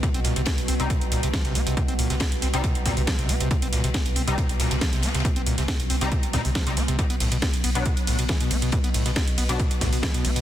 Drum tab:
RD |x---x-x-x-x-x---x---x-x-x---x---|x---x---x---x---x---x-x-x---x---|x---x-x-x-x-x---x---x-x-x---xxxx|x---x---x---x---x---x-x-x-x-x-x-|
HH |x-x-o-x-x-x-o-x-x-x-o-x-x-x-o-x-|x-x-o-x-x-x-o-x-x-x-o-o-x-x-o-x-|x-x-o-x-x-x-o-x-x-x-o-x-x-x-o-x-|x-x-o-x-x-x-o-x-x-x-o-o-x-x-o-x-|
SD |----o---o---------------o-o-----|------o-o---o-------o---o-o-----|----o---o-----------o-o-o-o-oooo|------o-o---o-------o---o---o---|
BD |o-------o-------o-------o-------|o-------o-------o---o---o-------|o-------o-------o-------o-------|o-------o-------o---o---o-------|

RD |x---x-x-x-x-x---x---x-x-x---x---|x---x---x---x---x---x-x-x---x---|
HH |x-x-o-x-x-x-o-x-x-x-o-x-x-x-o-x-|x-x-o-x-x-x-o-x-x-x-o-o-x-x-o-x-|
SD |----o---o---------------o-o-----|------o-o---o-------o---o-o-----|
BD |o-------o-------o-------o-------|o-------o-------o---o---o-------|